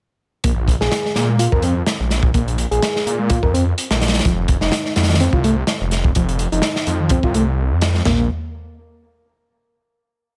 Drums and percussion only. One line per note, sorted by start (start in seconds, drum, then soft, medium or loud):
0.44 kick loud
0.44 closed hi-hat medium
0.68 kick loud
0.68 closed hi-hat medium
0.81 snare soft
0.92 snare loud
0.92 closed hi-hat medium
1.05 snare soft
1.16 snare medium
1.16 closed hi-hat medium
1.39 closed hi-hat loud
1.52 kick medium
1.62 closed hi-hat medium
1.86 snare loud
1.86 closed hi-hat medium
2.10 snare soft
2.10 closed hi-hat medium
2.23 kick loud
2.34 kick loud
2.34 closed hi-hat medium
2.48 closed hi-hat soft
2.58 closed hi-hat medium
2.72 closed hi-hat soft
2.82 snare loud
2.82 closed hi-hat medium
2.96 snare medium
3.07 closed hi-hat medium
3.30 kick loud
3.30 closed hi-hat medium
3.43 kick medium
3.54 closed hi-hat medium
3.78 closed hi-hat medium
3.91 snare loud
4.01 snare medium
4.01 closed hi-hat medium
4.08 snare medium
4.08 closed hi-hat medium
4.14 snare medium
4.14 closed hi-hat medium
4.19 snare loud
4.19 closed hi-hat medium
4.25 kick loud
4.25 closed hi-hat medium
4.48 kick loud
4.48 closed hi-hat medium
4.61 snare medium
4.72 snare loud
4.72 closed hi-hat medium
4.85 snare soft
4.96 snare medium
4.96 closed hi-hat medium
5.03 snare medium
5.03 closed hi-hat medium
5.09 snare medium
5.09 closed hi-hat medium
5.14 snare loud
5.14 closed hi-hat medium
5.20 closed hi-hat medium
5.33 kick loud
5.44 closed hi-hat medium
5.67 snare loud
5.67 closed hi-hat medium
5.91 snare soft
5.91 closed hi-hat medium
6.04 kick medium
6.15 kick loud
6.15 closed hi-hat medium
6.29 closed hi-hat soft
6.39 closed hi-hat medium
6.52 closed hi-hat soft
6.62 snare loud
6.62 closed hi-hat medium
6.76 snare medium
6.87 closed hi-hat medium
7.09 kick loud
7.09 closed hi-hat medium
7.23 kick loud
7.34 closed hi-hat medium
7.81 snare loud
7.81 closed hi-hat medium
7.95 snare soft
8.05 snare loud
8.05 floor tom loud
8.05 crash medium